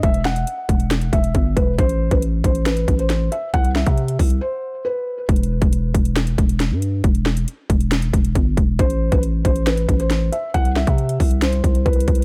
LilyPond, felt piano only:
\new Staff \with { instrumentName = "Felt piano" } { \time 4/4 \key e \minor \tempo 4 = 137 e''8 fis''2 e''4 b'8 | c''8. b'16 r8 c''8 b'8. c''8. e''8 | fis''8 e''4. c''4 b'4 | r1 |
r1 | c''8. b'16 r8 c''8 b'8. c''8. e''8 | fis''8 e''4. c''4 b'4 | }